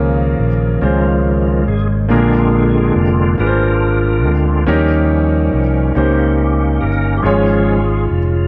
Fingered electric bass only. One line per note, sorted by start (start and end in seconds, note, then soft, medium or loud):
0.00 0.36 C#2 medium
0.39 0.79 A#1 medium
0.82 1.64 C#2 medium
1.68 2.11 G#1 medium
2.11 2.93 A#1 medium
2.96 3.36 F1 medium
3.39 4.24 G#1 medium
4.24 4.64 D2 medium
4.67 5.49 D#2 medium
5.54 5.93 C2 medium
5.96 6.78 C#2 medium
6.82 7.22 G1 medium
7.24 8.06 G#1 medium
8.11 8.48 F1 medium